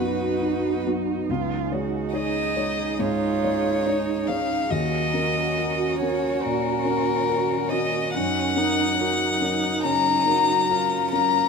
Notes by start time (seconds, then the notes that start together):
Already playing: F#2 F#3 B3 D#4 F#4 B4
0.00 B3 F#4
0.42 D#4 F#4
0.86 B3 F#4
1.29 C#2 C#4 D#4 F4 G#4
1.72 G#3 F#4 C#5
2.13 D#4 G#4 C#5 D#5
2.56 G#3 C#5
2.99 G#2 F4 C#5
3.44 G#3 C#5
3.86 D#4 C#5
4.27 G#3 C#4 C#5 F5
4.70 D#2 C#4 F#4 A#4 D#5
5.14 C#4 A#4
5.58 F#4 A#4
5.99 C#4 A#4 C#5
6.42 A#2 A#4
6.85 C#4 A#4
7.29 F#4 A#4
7.70 C#4 A#4 D#5
8.13 F#2 F#3 C#4 D#4 A#4 F#5
8.56 C#4 D#4 A#4
9.00 C#4 D#4 F#4 A#4
9.41 C#4 D#4 A#4
9.84 C#3 C#4 A#5
10.27 C#4 F#4 A#4
10.70 C#4 F4 F#4 A#4
11.11 C#4 A#4 A#5